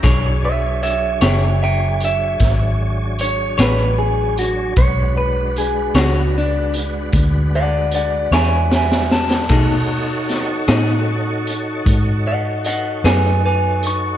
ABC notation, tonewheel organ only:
X:1
M:12/8
L:1/8
Q:3/8=51
K:Emix
V:1 name="Tonewheel organ"
[F,DGc]12 | [G,DFB]12 | [^DFAc]12 |]